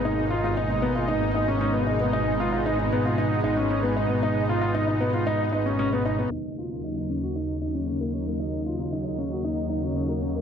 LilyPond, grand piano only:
\new Staff \with { instrumentName = "Grand piano" } { \time 4/4 \key ees \minor \tempo 4 = 115 ees'8 f'16 f'16 ees'16 ees'16 ces'16 f'16 ees'8 ees'16 des'16 des'16 ces'16 ees'16 ces'16 | ees'8 f'16 f'16 ees'16 ees'16 ces'16 f'16 ees'8 ees'16 des'16 des'16 ces'16 ees'16 ces'16 | ees'8 f'16 f'16 ees'16 ees'16 ces'16 f'16 ees'8 ees'16 des'16 des'16 ces'16 ees'16 ces'16 | ees'8 f'16 f'16 ees'16 ees'16 des'16 ges'16 ees'8 ees'16 des'16 des'16 bes16 des'16 bes16 |
ees'8 f'16 f'16 ees'16 ees'16 des'16 ges'16 ees'8 ees'16 des'16 des'16 bes16 des'16 bes16 | }